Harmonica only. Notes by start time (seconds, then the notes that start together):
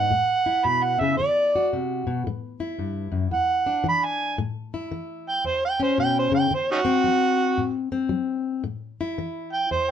Already playing: F#5
0.65 B5
0.83 F#5
1.00 E5
1.17 D5
3.33 F#5
3.88 B5
4.04 G#5
5.28 G5
5.46 C5
5.65 G5
5.82 C5
6.00 G5
6.19 C5
6.35 G5
6.54 C5
6.71 C#4 D#4 F#4
9.53 G5
9.71 C5